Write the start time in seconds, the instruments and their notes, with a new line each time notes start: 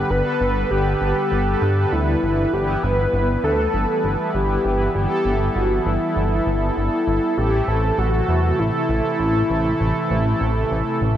Already playing: analog synth pad D3 G3 B3 B4, analog synth lead G4
0.10 analog synth bass G1, analog synth pad A4, analog synth lead B4
0.41 analog synth bass G1
0.71 analog synth bass G1, analog synth lead G4
1.01 analog synth bass G1
1.32 analog synth bass G1
1.62 analog synth bass G2
1.92 analog synth bass D2, analog synth lead E4
2.23 analog synth bass G1
2.53 analog synth bass G1, analog synth pad E3 B3 E4, analog synth lead G4
2.83 analog synth bass G1, analog synth lead B4
3.13 analog synth bass G1
3.44 analog synth bass D2, analog synth lead A4
3.74 analog synth bass G1
4.04 analog synth bass G1
4.34 analog synth bass G1, analog synth lead G4
4.65 analog synth bass G1
4.95 analog synth bass G1, analog synth lead G4, analog synth pad A4
5.25 analog synth bass G1
5.56 analog synth bass G1, analog synth lead F#4
5.86 analog synth bass G1, analog synth lead E4
6.16 analog synth bass G1
6.47 analog synth bass G1
6.77 analog synth bass G1, analog synth lead E4
7.07 analog synth bass G1
7.38 analog synth bass A1, analog synth pad C3 E3 A3 E4, analog synth lead G4
7.68 analog synth bass A1, analog synth lead A4
7.98 analog synth bass A1, analog synth lead F#4
8.29 analog synth bass E2
8.59 analog synth bass A1, analog synth lead E4
8.89 analog synth bass A1
9.20 analog synth bass A1
9.50 analog synth bass A1
9.80 analog synth bass A1
10.11 analog synth bass A1
10.41 analog synth bass A1
10.71 analog synth bass A1
11.02 analog synth bass A1